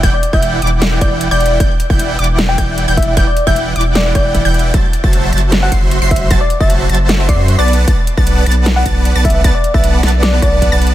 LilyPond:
<<
  \new Staff \with { instrumentName = "Synth pluck" } { \time 4/4 \key e \minor \tempo 4 = 153 g'''16 r8 g'''8. d'''4 g'''8. g'''8. | g'''16 r8 g'''8. d'''4 g'''8. g'''8. | g'''16 r8 g'''8. d'''4 g'''8. g'''8. | a'''16 r8 a'''8. a'''4 c''''8. c''''8. |
a'''16 r8 a'''8. a'''4 c''''8. a'''8. | a'''16 r8 a'''8. a'''4 a'''8. a'''8. | a'''16 r8 a'''8. a'''4 a'''8. a'''8. | }
  \new Staff \with { instrumentName = "Soft synth lead" } { \time 4/4 \key e \minor r16 d''8 e''16 r4. d''16 r8 d''8.~ | d''8. r4. g''16 r4 e''16 e''16 | r16 d''8 e''16 r4 d''16 r16 d''4. | r2 r16 fis''16 r4 e''16 e''16 |
r16 d''8 e''16 r4. d''16 r8 d''16 r8 | r2 r16 fis''16 r4 e''16 e''16 | r16 d''8 e''16 r4 d''16 r16 d''4. | }
  \new Staff \with { instrumentName = "Supersaw synth" } { \time 4/4 \key e \minor <e e' d'' fis'' g''>16 r8 <e e' d'' fis'' g''>8. <e e' d'' fis'' g''>4 <e e' d'' fis'' g''>8. <e e' d'' fis'' g''>8. | <e e' d'' fis'' g''>16 r8 <e e' d'' fis'' g''>8. <e e' d'' fis'' g''>4 <e e' d'' fis'' g''>8. <e e' d'' fis'' g''>8. | <e e' d'' fis'' g''>16 r8 <e e' d'' fis'' g''>8. <e e' d'' fis'' g''>4 <e e' d'' fis'' g''>8. <e e' d'' fis'' g''>8. | <fis fis' c'' e'' a''>16 r8 <fis fis' c'' e'' a''>8. <fis fis' c'' e'' a''>4 <fis fis' c'' e'' c'''>8. <fis fis' c'' e'' c'''>8. |
<fis fis' c'' e'' a''>16 r8 <fis fis' c'' e'' a''>8. <fis fis' c'' e'' a''>4 <fis fis' c'' e'' c'''>8. <b b' d'' fis'' a''>8. | <b b' d'' fis'' a''>16 r8 <b b' d'' fis'' a''>8. <b b' d'' fis'' a''>4 <b b' d'' fis'' a''>8. <b b' d'' fis'' a''>8. | <b b' d'' fis'' a''>16 r8 <b b' d'' fis'' a''>8. <b b' d'' fis'' a''>4 <b b' d'' fis'' a''>8. <b b' d'' fis'' a''>8. | }
  \new Staff \with { instrumentName = "Sub bass" } { \clef bass \time 4/4 \key e \minor e,,16 r8 e,,8. e,,4 e,,8. e,,8. | e,,16 r8 e,,8. e,,4 e,,8. e,,8. | e,,16 r8 e,,8. e,,4 e,,8. e,,8. | fis,,16 r8 fis,,8. fis,,4 fis,,8. fis,,8. |
fis,,16 r8 fis,,8. fis,,4 fis,8. b,,8. | b,,16 r8 b,,8. b,,4 b,,8. b,,8. | b,,16 r8 b,,8. b,,4 b,,8. b,,8. | }
  \new DrumStaff \with { instrumentName = "Drums" } \drummode { \time 4/4 <hh bd>8 hh16 bd16 hh8 hh32 hh16. <hh sn>8 <hh bd>8 hh8 hh32 hh16. | <hh bd>8 hh16 bd16 hh8 hh32 hh16. <hh sn>8 <hh bd>8 hh8 <hh bd>32 hh16. | <hh bd>8 hh16 bd16 hh8 hh32 hh16. <hh sn>8 <hh bd>8 <hh bd>8 hh32 hh16. | <hh bd>8 hh16 bd16 hh8 hh32 hh16. <hh sn>8 <hh bd>8 hh8 <hh bd>32 hh16. |
<hh bd>8 hh16 bd16 hh8 hh32 hh16. <hh sn>8 <hh bd>8 hh8 hh32 hh16. | <hh bd>8 hh16 bd16 hh8 hh32 hh16. <hh sn>8 <hh bd>8 hh8 <hh bd>32 hh16. | <hh bd>8 hh16 bd16 hh8 <hh sn>32 hh16. <hh sn>8 <hh bd>8 <hh bd>8 hh32 hh16. | }
>>